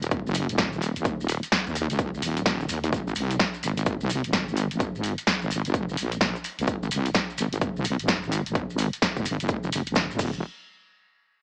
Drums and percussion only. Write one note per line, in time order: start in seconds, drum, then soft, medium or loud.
0.02 closed hi-hat medium
0.02 maracas soft
0.11 kick loud
0.11 closed hi-hat medium
0.11 maracas medium
0.27 maracas soft
0.34 open hi-hat loud
0.34 maracas medium
0.49 closed hi-hat medium
0.49 maracas soft
0.58 kick loud
0.58 snare loud
0.58 closed hi-hat medium
0.58 maracas medium
0.73 maracas soft
0.82 open hi-hat loud
0.82 maracas medium
0.96 closed hi-hat medium
0.96 maracas soft
1.05 kick loud
1.05 closed hi-hat soft
1.05 maracas soft
1.21 maracas soft
1.29 open hi-hat loud
1.29 maracas medium
1.43 closed hi-hat medium
1.43 maracas soft
1.52 kick loud
1.52 snare loud
1.52 closed hi-hat soft
1.52 maracas medium
1.67 maracas soft
1.75 open hi-hat medium
1.75 maracas medium
1.90 closed hi-hat medium
1.90 maracas soft
1.99 kick loud
1.99 closed hi-hat medium
1.99 maracas medium
2.14 maracas soft
2.22 open hi-hat loud
2.22 maracas medium
2.37 closed hi-hat medium
2.37 maracas soft
2.46 kick loud
2.46 snare loud
2.46 closed hi-hat medium
2.46 maracas medium
2.61 maracas soft
2.69 open hi-hat loud
2.69 maracas medium
2.84 closed hi-hat medium
2.84 maracas soft
2.93 kick loud
2.93 closed hi-hat soft
2.93 maracas soft
3.07 maracas soft
3.15 open hi-hat loud
3.15 maracas loud
3.31 closed hi-hat medium
3.31 maracas soft
3.40 kick loud
3.40 snare loud
3.40 closed hi-hat soft
3.40 maracas soft
3.54 maracas soft
3.63 open hi-hat medium
3.63 maracas medium
3.77 closed hi-hat medium
3.77 maracas soft
3.86 kick loud
3.86 closed hi-hat medium
3.86 maracas medium
4.01 maracas soft
4.10 open hi-hat loud
4.10 maracas medium
4.24 closed hi-hat medium
4.24 maracas soft
4.33 kick loud
4.33 snare loud
4.33 closed hi-hat medium
4.33 maracas medium
4.48 maracas soft
4.57 open hi-hat medium
4.57 maracas medium
4.71 closed hi-hat medium
4.71 maracas soft
4.80 kick loud
4.80 closed hi-hat medium
4.80 maracas medium
4.95 maracas soft
5.04 open hi-hat loud
5.04 maracas medium
5.18 closed hi-hat medium
5.18 maracas soft
5.27 kick loud
5.27 snare loud
5.27 closed hi-hat soft
5.27 maracas medium
5.42 maracas soft
5.50 open hi-hat medium
5.50 maracas medium
5.65 closed hi-hat medium
5.65 maracas soft
5.74 kick loud
5.74 closed hi-hat medium
5.74 maracas medium
5.89 maracas soft
5.97 open hi-hat loud
5.97 maracas medium
6.12 closed hi-hat medium
6.12 maracas soft
6.21 kick loud
6.21 snare loud
6.21 closed hi-hat medium
6.21 maracas medium
6.36 maracas soft
6.44 open hi-hat medium
6.44 maracas medium
6.59 closed hi-hat medium
6.59 maracas soft
6.67 kick loud
6.67 closed hi-hat medium
6.67 maracas medium
6.83 maracas soft
6.91 open hi-hat loud
6.91 maracas loud
7.06 closed hi-hat medium
7.06 maracas soft
7.14 kick loud
7.14 snare loud
7.14 closed hi-hat medium
7.14 maracas soft
7.30 maracas soft
7.38 open hi-hat medium
7.38 maracas medium
7.53 closed hi-hat medium
7.53 maracas soft
7.61 kick loud
7.61 closed hi-hat medium
7.61 maracas soft
7.76 maracas soft
7.84 open hi-hat loud
7.84 maracas medium
7.99 closed hi-hat medium
7.99 maracas soft
8.08 kick loud
8.08 snare loud
8.08 closed hi-hat medium
8.08 maracas medium
8.23 maracas soft
8.32 open hi-hat medium
8.32 maracas medium
8.46 closed hi-hat medium
8.46 maracas soft
8.55 kick loud
8.55 closed hi-hat medium
8.55 maracas soft
8.70 maracas soft
8.78 open hi-hat loud
8.78 maracas medium
8.93 closed hi-hat medium
8.93 maracas soft
9.02 kick loud
9.02 snare loud
9.02 closed hi-hat medium
9.02 maracas medium
9.17 kick medium
9.17 maracas soft
9.25 open hi-hat medium
9.25 maracas medium
9.40 closed hi-hat medium
9.40 maracas soft
9.48 kick loud
9.48 closed hi-hat medium
9.48 maracas soft
9.63 maracas soft
9.72 open hi-hat loud
9.72 maracas medium
9.87 closed hi-hat medium
9.87 maracas soft
9.95 kick loud
9.95 snare loud
9.95 closed hi-hat medium
9.95 maracas medium
10.11 maracas soft
10.19 kick loud
10.19 crash medium
10.19 maracas medium
10.33 maracas soft